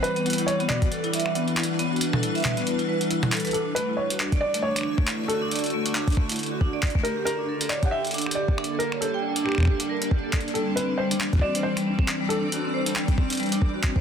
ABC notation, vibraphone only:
X:1
M:4/4
L:1/16
Q:"Swing 16ths" 1/4=137
K:D
V:1 name="Vibraphone"
z B, E E z B, F z A E e z B, E E z | B, F z A E e z B, E E B E E z A B | D z A, E z F D d z A, D D z A, E z | F D d z A, D D z A, E z F D d z A, |
G G z D A z c G g z D G G z D A | z c G g z D G G z D _B z G A d z | G, =C C z G, D z F C =c z G, C C z G, | D z F =C =c z G, C C z G, D z F C c |]